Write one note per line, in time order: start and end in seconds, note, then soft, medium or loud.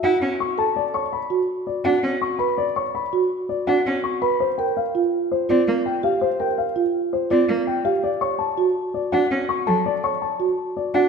0.03 0.17 E4 medium
0.03 0.27 F#4 medium
0.03 0.27 F#5 medium
0.22 0.35 C#4 soft
0.40 0.64 C#6 medium
0.58 0.81 A4 medium
0.58 0.82 A5 medium
0.76 1.00 D5 medium
0.94 1.18 C#5 soft
0.94 1.18 C#6 medium
1.13 1.36 B5 medium
1.30 1.54 F#4 medium
1.67 1.91 D5 soft
1.85 1.99 D4 medium
1.85 2.09 F#4 medium
1.85 2.09 F#5 medium
2.03 2.17 C#4 soft
2.22 2.45 C#6 medium
2.39 2.63 B4 medium
2.39 2.63 B5 medium
2.58 2.81 D5 medium
2.76 3.00 C#5 medium
2.76 3.00 C#6 medium
2.95 3.18 B5 medium
3.13 3.36 F#4 medium
3.49 3.73 D5 medium
3.67 3.81 D4 medium
3.67 3.91 F#4 medium
3.67 3.91 F#5 medium
3.86 4.00 C#4 medium
4.04 4.27 C#6 medium
4.22 4.45 B4 medium
4.22 4.45 B5 medium
4.40 4.64 C5 medium
4.58 4.82 A#4 medium
4.58 4.82 G5 medium
4.77 5.00 F5 medium
4.95 5.18 F4 medium
5.32 5.55 C5 medium
5.49 5.63 C4 medium
5.49 5.73 F4 medium
5.49 5.73 D5 medium
5.68 5.81 A#3 medium
5.86 6.09 G5 medium
6.03 6.27 G4 medium
6.03 6.27 F5 medium
6.21 6.45 C5 medium
6.40 6.63 A#4 medium
6.40 6.63 G5 medium
6.58 6.82 F5 medium
6.76 7.00 F4 medium
7.13 7.36 C5 medium
7.30 7.45 C4 medium
7.30 7.54 F4 medium
7.30 7.54 D5 medium
7.49 7.62 A#3 medium
7.67 7.91 G5 medium
7.85 8.09 G4 medium
7.85 8.09 F5 medium
8.03 8.27 D5 medium
8.21 8.45 C#5 medium
8.21 8.45 C#6 medium
8.39 8.63 A5 medium
8.58 8.81 F#4 medium
8.94 9.18 D5 soft
9.12 9.26 D4 medium
9.12 9.36 F#4 medium
9.12 9.36 F#5 medium
9.31 9.45 C#4 medium
9.49 9.73 C#6 medium
9.67 9.81 F#3 medium
9.67 9.91 A4 medium
9.67 9.91 A5 medium
9.86 10.09 D5 medium
10.04 10.27 C#5 medium
10.04 10.27 C#6 medium
10.22 10.45 A5 soft
10.40 10.63 F#4 medium
10.77 11.00 D5 medium
10.94 11.08 D4 medium
10.94 11.09 F#4 medium
10.94 11.09 F#5 medium